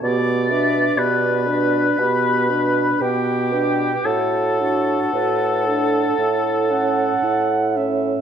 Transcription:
<<
  \new Staff \with { instrumentName = "Flute" } { \time 4/4 \key g \lydian \tempo 4 = 58 r8 e''8 d''4 b''4 g''4 | fis''2.~ fis''8 r8 | }
  \new Staff \with { instrumentName = "Clarinet" } { \time 4/4 \key g \lydian g'8 b'8 g'8 b'8 g'8 b'8 g'8 b'8 | a'8 fis'8 b'8 a'4 fis''4 e''8 | }
  \new Staff \with { instrumentName = "Oboe" } { \time 4/4 \key g \lydian d''4 b'2 g'4 | a'2.~ a'8 r8 | }
  \new Staff \with { instrumentName = "French horn" } { \time 4/4 \key g \lydian b8 d'8 b8 d'8 b8 d'8 b8 d'8 | fis'8 d'8 fis'8 d'8 e'8 cis'8 e'8 cis'8 | }
  \new Staff \with { instrumentName = "Bassoon" } { \clef bass \time 4/4 \key g \lydian b,4 b,4 b,4 b,4 | a,4 a,4 a,4 a,4 | }
>>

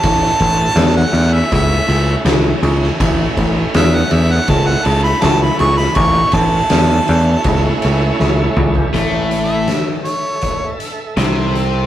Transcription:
<<
  \new Staff \with { instrumentName = "Harmonica" } { \time 4/4 \key a \major \tempo 4 = 81 a''4~ a''16 fis''8 e''16 e''4 r4 | r4 e''16 fis''16 e''16 fis''16 a''16 fis''16 a''16 b''16 a''16 b''16 cis'''16 b''16 | cis'''8 a''2 r4. | \tuplet 3/2 { r4 e''8~ } e''8 cis''4 r4. | }
  \new Staff \with { instrumentName = "Tonewheel organ" } { \time 4/4 \key a \major <a cis' e'>1 | <a cis' e'>1 | \tuplet 3/2 { <bes d' f'>8 <a cis' e'>4~ } <a cis' e'>2. | <a' e''>1 | }
  \new Staff \with { instrumentName = "Overdriven electric guitar" } { \clef bass \time 4/4 \key a \major r1 | r1 | r1 | <a, a>4 r2 <c c'>4 | }
  \new Staff \with { instrumentName = "Picked electric bass" } { \clef bass \time 4/4 \key a \major a,,8 a,,8 e,8 e,8 cis,8 cis,8 cis,8 cis,8 | a,,8 a,,8 e,8 e,8 cis,8 cis,8 cis,8 cis,8 | a,,8 a,,8 e,8 e,8 cis,8 cis,8 cis,8 cis,8 | a,,4 r2 c,4 | }
  \new DrumStaff \with { instrumentName = "Drums" } \drummode { \time 4/4 <bd cymr>8 <bd cymr>8 <cymr sn>8 cymr8 <bd cymr>8 cymr8 <cymr sn>8 cymr16 sn16 | <bd cymr>8 <bd cymr>8 <cymr sn>8 cymr8 <bd cymr>8 cymr8 <cymr sn>8 cymr16 sn16 | <bd cymr>8 <bd cymr>8 <cymr sn>8 cymr8 <bd cymr>8 cymr8 sn8 toml16 tomfh16 | <hh bd>8 hh8 <hh sn>8 hh8 <hh bd>8 hh8 <hh sn>8 hh8 | }
>>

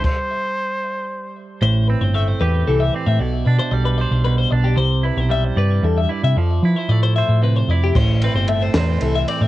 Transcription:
<<
  \new Staff \with { instrumentName = "Clean electric guitar" } { \time 6/8 \key c \major \tempo 4. = 76 r2. | c''8 b'16 c''16 e''16 c''16 b'8 a'16 e''16 d''16 e''16 | d''8 b'16 c''16 d''16 b'16 d''8 b'16 c''16 d''16 g'16 | c''8 b'16 c''16 e''16 c''16 b'8 a'16 e''16 d''16 e''16 |
d''8 b'16 c''16 d''16 c''16 e''8 b'16 c''16 d''16 g'16 | c''8 b'16 c''16 e''16 c''16 b'8 a'16 e''16 d''16 e''16 | }
  \new Staff \with { instrumentName = "Trumpet" } { \time 6/8 \key c \major c''2~ c''8 r8 | r2. | r2. | r2. |
r2. | r2. | }
  \new Staff \with { instrumentName = "Clean electric guitar" } { \time 6/8 \key c \major << { r2. | r8 c'4 g'4 c'8 | r8 d'4 c''4 d'8 | r8 e'4 d''4 e'8 |
r8 e'4 c''4 e'8 | r8 c'4 c''4 c'8 | } \\ { g2. | a,4 a4 e4 | b,4 g4 b,4 | c4 g4 g,4 |
f4 a4 c4 | a,4 a4 e4 | } >> }
  \new Staff \with { instrumentName = "Picked electric bass" } { \clef bass \time 6/8 \key c \major r2. | a,,8. g,,8. e,8 c,8 r16 a,16 | b,,8 b,16 r16 b,,8. b,,8. b,,8 | c,8. b,,8. g,8 e,8 r16 c16 |
f,8 f16 r16 a,8. a,8. f,8 | a,,8. g,,8. e,8 c,8 r16 a,16 | }
  \new DrumStaff \with { instrumentName = "Drums" } \drummode { \time 6/8 <cymc bd>4. r4. | r4. r4. | r4. r4. | r4. r4. |
r4. r4. | <cymc bd>8 cymr8 cymr8 <cymr sn>8 cymr8 cymr8 | }
>>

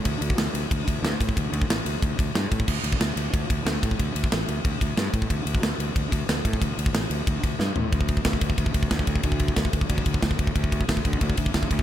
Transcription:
<<
  \new Staff \with { instrumentName = "Fingered electric bass" } { \clef bass \time 4/4 \key c \dorian \tempo 4 = 183 d,8 d,8 d,8 d,8 d,8 d,8 d,8 a,8 | d,8 d,8 a,,8 d,8 d,8 d,8 g,8 a,8 | d,8 d,8 d,8 d,8 d,8 d,8 d,8 a,8 | d,8 d,8 a,,8 d,8 d,8 d,8 g,8 a,8 |
d,8 d,8 d,8 d,8 d,8 d,8 d,8 a,8 | d,8 d,8 a,,8 d,8 d,8 d,8 g,8 a,8 | d,4 d,8 d,8 d,8 d,8 d,8 d,8 | d,4 d,8 d,8 d,8 d,8 d,8 d,8 |
d,4 d,8 d,8 d,8 d,8 d,8 d,8 | }
  \new DrumStaff \with { instrumentName = "Drums" } \drummode { \time 4/4 <bd cymr>8 cymr16 bd16 <cymr sn>8 cymr8 <bd cymr>8 <bd cymr>8 <cymr sn>8 <bd cymr>16 bd16 | <bd cymr>8 cymr16 bd16 <cymr sn>8 cymr8 <bd cymr>8 <bd cymr>8 <cymr sn>8 <bd cymr>16 bd16 | <cymc bd>8 cymr16 bd16 <cymr sn>8 cymr8 <bd cymr>8 <bd cymr>8 <cymr sn>8 <bd cymr>16 bd16 | <bd cymr>8 cymr16 bd16 <cymr sn>8 cymr8 <bd cymr>8 <bd cymr>8 <cymr sn>8 <bd cymr>16 bd16 |
<bd cymr>8 cymr16 bd16 <cymr sn>8 cymr8 <bd cymr>8 <bd cymr>8 <cymr sn>8 <bd cymr>16 bd16 | <bd cymr>8 cymr16 bd16 <cymr sn>8 cymr8 <bd cymr>8 <bd cymr>8 sn8 tomfh8 | <bd cymr>16 bd16 <bd cymr>16 bd16 <bd cymr sn>16 bd16 <bd cymr>16 bd16 <bd cymr>16 bd16 <bd cymr>16 bd16 <bd cymr sn>16 bd16 <bd cymr>16 bd16 | <bd cymr>16 bd16 <bd cymr>16 bd16 <bd cymr sn>16 bd16 <bd cymr>16 bd16 <bd cymr>16 bd16 <bd cymr>16 bd16 <bd cymr sn>16 bd16 <bd cymr>16 bd16 |
<bd cymr>16 bd16 <bd cymr>16 bd16 <bd cymr sn>16 bd16 <bd cymr>16 bd16 <bd cymr>16 bd16 <bd cymr>16 bd16 <bd cymr sn>16 bd16 <bd cymr>16 bd16 | }
>>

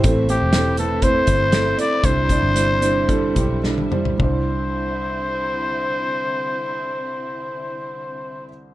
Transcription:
<<
  \new Staff \with { instrumentName = "Trumpet" } { \time 4/4 \key c \major \tempo 4 = 105 r8 g'4 a'8 c''4. d''8 | c''2. r4 | c''1~ | c''1 | }
  \new Staff \with { instrumentName = "Upright piano" } { \time 4/4 \key c \major <a c' e' c''>8 <a c' e' c''>8 <a c' e' c''>8 <a c' e' b'>8 <a c' e' c''>8 <a c' e'>8 <a c' e' a'>8 <a c' e' d''>8 | <g d' e' c''>8 <g d' e' d''>8 <g d' e' c''>8 <g d' e' c''>8 <g d' e' a'>8 <g d' e' g'>8 <g d' e' a'>8 <g d' e' c''>8 | <g d' e' c''>1~ | <g d' e' c''>1 | }
  \new Staff \with { instrumentName = "Upright piano" } { \clef bass \time 4/4 \key c \major a,4. r2 r8 | c4. r2 r8 | c,1~ | c,1 | }
  \new Staff \with { instrumentName = "String section" } { \time 4/4 \key c \major << { e'1~ | e'1 | <d c' e'>1~ | <d c' e'>1 | } \\ { <c a>1 | <d c'>1 | r1 | r1 | } >> }
  \new Staff \with { instrumentName = "Picked electric bass" } { \clef bass \time 4/4 \key c \major a,,8. e,,4.~ e,,16 g,,4 r8 | c,8. g,,4.~ g,,16 b,,4 r8 | c,1~ | c,1 | }
  \new DrumStaff \with { instrumentName = "Drums" } \drummode { \time 4/4 <hh bd>8 hh8 <hh sn>8 hh8 <hh bd>8 <hh bd>8 <hh sn>8 hh8 | <hh bd>8 <hh bd>8 hh8 hh8 <hh bd>8 <hh bd>8 sn16 tommh16 toml16 tomfh16 | <bd tomfh>4 r4 r4 r4 | r4 r4 r4 r4 | }
>>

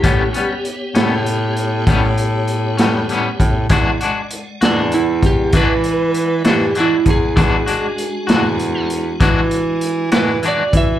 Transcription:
<<
  \new Staff \with { instrumentName = "Electric slide guitar" } { \time 12/8 \key e \mixolydian \tempo 4. = 65 g'2~ g'8 r2. r8 | r4. d'8 e'8 g'8 b'4. g'8 e'8 gis'8~ | gis'2~ gis'8 r2 b'8 d''8 e''8 | }
  \new Staff \with { instrumentName = "Tonewheel organ" } { \time 12/8 \key e \mixolydian <b g' cis''>1. | <gis d'' fis''>1. | <gis d' fis'>1. | }
  \new Staff \with { instrumentName = "Clean electric guitar" } { \time 12/8 \key e \mixolydian <a, g b cis'>8 <g b cis'>8 r8 <g b cis'>8 r4 <a, g b cis'>8 r4 <g b cis'>8 <a, g b cis'>8 r8 | <e gis d' fis'>8 <gis d' fis'>8 r8 <gis d' fis'>8 r4 <e gis d' fis'>8 r4 <gis d' fis'>8 <e gis d' fis'>8 r8 | <e gis d' fis'>8 <gis d' fis'>8 r8 <gis d' fis'>8 r4 <e gis d' fis'>8 r4 <gis d' fis'>8 <e gis d' fis'>8 r8 | }
  \new Staff \with { instrumentName = "Baritone saxophone" } { \clef bass \time 12/8 \key e \mixolydian a,8 r4 a,4. a,4. a,8 r8 a,8 | e,8 r4 e,4. e4. e8 r8 e,8 | e,8 r4 e,4. e4. e8 r8 e8 | }
  \new DrumStaff \with { instrumentName = "Drums" } \drummode { \time 12/8 <hh bd>8 hh8 hh8 <hh sn>8 hh8 hh8 <hh bd>8 hh8 hh8 <hh sn>8 hh8 <hh bd>8 | <hh bd>8 hh8 hh8 <hh sn>8 hh8 <hh bd>8 <hh bd>8 hh8 hh8 <hh sn>8 hh8 <hh bd>8 | <hh bd>8 hh8 hh8 <hh sn>8 hh8 hh8 <hh bd>8 hh8 hh8 <hh sn>8 hh8 <hh bd>8 | }
>>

